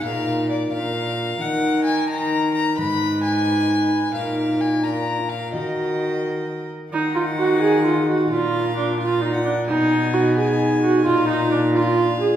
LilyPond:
<<
  \new Staff \with { instrumentName = "Violin" } { \time 6/8 \key ees \minor \tempo 4. = 87 f''4 d''8 f''4. | ges''4 aes''8 bes''4 bes''8 | ces'''4 aes''2 | f''4 aes''8 bes''4 f''8 |
ees''2~ ees''8 r8 | ges''2. | f''4. f''8. ges''8. | aes''4. aes''4. |
f''4. f''4. | }
  \new Staff \with { instrumentName = "Viola" } { \time 6/8 \key ees \minor bes'4. bes'4. | bes'4. bes'4. | ces''2. | bes'4. bes'4. |
bes'2~ bes'8 r8 | ees'8 f'8 ges'8 aes'8 f'8 ges'8 | f'4 d'8 f'8 ees'8 d'8 | ees'4 ges'8 aes'4 ges'8 |
f'8 ees'8 d'8 f'4 aes'8 | }
  \new Staff \with { instrumentName = "Trombone" } { \time 6/8 \key ees \minor ees'4. d'4. | ees'4. ees'4. | ees'2. | ees'4. d'8. f'8. |
ges'2~ ges'8 r8 | ees'2. | d'4. d'4. | ees'4. ees'4. |
ees'4. d'4. | }
  \new Staff \with { instrumentName = "Cello" } { \clef bass \time 6/8 \key ees \minor bes,4. bes,4. | ees2. | aes,2. | bes,2. |
ees2~ ees8 r8 | ees2. | bes,2. | ces2. |
bes,2. | }
>>